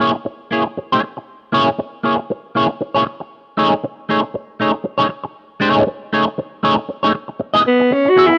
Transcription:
0.00 A#3 E4 G#4 C#5
0.14 muted clean electric guitar stroke
0.25 muted clean electric guitar stroke
0.51 A#3 E4 G#4 C#5
0.66 muted clean electric guitar stroke
0.77 muted clean electric guitar stroke
0.92 A#3 E4 G#4 C#5
1.03 muted clean electric guitar stroke
1.17 muted clean electric guitar stroke
1.52 A#3 E4 G#4 C#5
1.79 muted clean electric guitar stroke
2.03 A#3 E4 G#4 C#5
2.18 muted clean electric guitar stroke
2.30 muted clean electric guitar stroke
2.55 A#3 E4 G#4 C#5
2.69 muted clean electric guitar stroke
2.81 muted clean electric guitar stroke
2.95 A#3 E4 G#4 C#5
3.06 muted clean electric guitar stroke
3.20 muted clean electric guitar stroke
3.57 A3 D#4 G#4 C#5
3.84 muted clean electric guitar stroke
4.09 A3 D#4 G#4 C#5
4.23 muted clean electric guitar stroke
4.34 muted clean electric guitar stroke
4.60 A3 D#4 G#4 C#5
4.74 muted clean electric guitar stroke
4.84 muted clean electric guitar stroke
4.98 A3 D#4 G#4 C#5
5.09 muted clean electric guitar stroke
5.24 muted clean electric guitar stroke
5.60 A3 D#4 G#4 C#5
5.87 muted clean electric guitar stroke
6.13 A3 D#4 G#4 C#5
6.27 muted clean electric guitar stroke
6.38 muted clean electric guitar stroke
6.63 A3 D#4 G#4 C#5
6.78 muted clean electric guitar stroke
6.89 muted clean electric guitar stroke
7.03 A3 D#4 G#4 C#5
7.15 muted clean electric guitar stroke
7.28 muted clean electric guitar stroke
7.40 muted clean electric guitar stroke
7.54 B3 E4 G#4 D#5
7.64 B3, muted clean electric guitar stroke
7.80 muted clean electric guitar stroke
7.91 C#4, muted clean electric guitar stroke
8.05 F#4, muted clean electric guitar stroke
8.16 B3 E4 G#4 E5
8.26 E4
8.32 muted clean electric guitar stroke

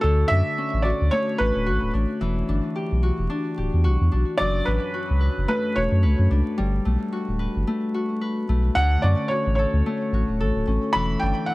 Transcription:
Already playing: A3 D4 F#4 A4
0.01 D2 D3 A4
0.28 F#2 D4 E5
0.58 C#4
0.74 A1
0.82 F#4 D5
1.01 D2
1.11 A3 C#5
1.38 A1 C#4 B4
1.55 D1
1.66 A1 F#4
1.82 D1
1.94 A1 D4
2.21 E1 E3
2.49 G1 D4
2.76 G4
2.92 B1
3.03 F#4
3.19 E1
3.30 D4
3.58 D1 G4
3.74 E2
3.84 B1 F#4
4.01 E2
4.12 B1 D4
4.38 F#1 F#2 D5
4.65 A1 D4 B4
4.94 F#4
5.10 C#2
5.21 B4
5.38 F#1
5.48 A3 B4
5.75 E1 F#4 C#5
5.92 F#2
6.03 C#2 B4
6.19 F#2
6.31 C#2 D4
6.58 G1 G3
6.85 B1 A3
7.12 F#4
7.29 D1
7.39 B4
7.56 G1
7.67 A3
7.94 F#4
8.21 B4
8.49 B1 A3
8.75 D2 D3 F#5
9.02 F#2 C#4 D5
9.28 F#4 C#5
9.47 A1
9.55 A4 C#5
9.73 D2
9.86 A3
10.13 A1 F#4
10.29 D1
10.40 A1 A4
10.55 D1
10.67 A1 C#4
10.93 E1 E3 B5
11.20 G1 D4 G5
11.46 E4 F#5

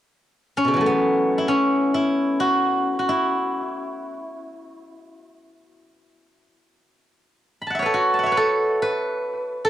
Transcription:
0.57 C#4
0.64 B2 C#3
0.74 E3 F#3
0.81 A3
0.86 B3
1.38 E4
1.48 C#4
1.94 E4
2.40 F#4
2.99 F#4
3.09 E4
7.62 B5
7.67 F#5 A5
7.75 E5
7.79 B4 C#5
7.86 A4
7.94 F#4
8.14 A5
8.19 F#5
8.23 C#5 E5
8.32 B4
8.37 A4
8.82 B4
9.65 A4

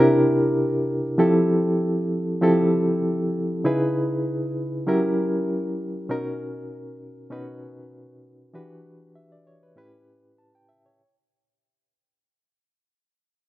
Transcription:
Already playing: C3 D4 E4 G4 A#4
1.18 F3 C4 E4 G4 A4
2.41 F3 C4 E4 G4 A4
3.64 C#3 D#4 E4 G#4 B4
4.87 F#3 C#4 E4 G4 A#4
6.09 B2 C#4 D#4 F#4 A#4
7.30 B2 C#4 D#4 F#4 B4
8.54 E3 D4 F#4 G4 B4
9.15 E5
9.32 D5
9.47 C#5
9.63 B4
9.76 A2 C#4 E4 G4 B4
10.38 A5
10.55 G5
10.69 E5
10.86 C#5

